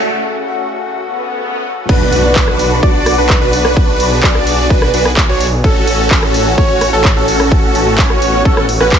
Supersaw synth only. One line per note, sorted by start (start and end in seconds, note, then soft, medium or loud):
1.89 2.33 D4 medium
1.89 2.33 F#4 medium
1.89 2.33 B4 loud
2.36 2.80 D4 medium
2.36 2.80 F#4 medium
2.36 2.80 B4 medium
2.83 3.15 D4 loud
2.83 3.15 F#4 medium
2.83 3.15 D5 loud
3.18 3.35 D4 medium
3.18 3.35 F#4 medium
3.18 3.35 B4 loud
3.41 4.21 D4 medium
3.41 4.21 F#4 medium
3.41 4.21 B4 loud
4.23 4.68 D4 medium
4.23 4.68 F#4 medium
4.23 4.68 D5 loud
4.70 4.90 D4 loud
4.70 4.90 F#4 medium
4.70 4.90 B4 loud
4.94 5.11 D4 medium
4.94 5.11 F#4 medium
4.94 5.11 B4 medium
5.29 5.46 D4 medium
5.29 5.46 F#4 medium
5.29 5.46 C#5 medium
5.64 6.08 C#4 medium
5.64 6.08 F#4 medium
5.64 6.08 A4 loud
6.11 6.55 C#4 medium
6.11 6.55 F#4 medium
6.11 6.55 A4 medium
6.58 6.90 C#4 loud
6.58 6.90 F#4 medium
6.58 6.90 C#5 loud
6.93 7.10 C#4 loud
6.93 7.10 F#4 medium
6.93 7.10 A4 loud
7.16 7.96 C#4 medium
7.16 7.96 F#4 medium
7.16 7.96 A4 loud
7.98 8.43 C#4 medium
7.98 8.43 F#4 medium
7.98 8.43 C#5 loud
8.45 8.65 C#4 medium
8.45 8.65 F#4 medium
8.45 8.65 A4 loud
8.81 8.98 C#4 medium
8.81 8.98 F#4 medium
8.81 8.98 B4 loud